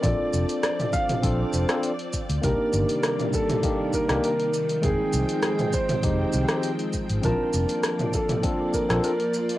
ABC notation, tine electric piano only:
X:1
M:4/4
L:1/16
Q:1/4=100
K:Bb
V:1 name="Tine electric piano"
[CDFA]8 [CDFA]3 [CDFA] z4 | [B,DEG]8 [B,DEG]3 [B,DEG] z4 | [_A,CEg]8 [A,CEG]3 [A,CEG] z4 | [CDFa]8 [CDFA]3 [CDFA] z4 |]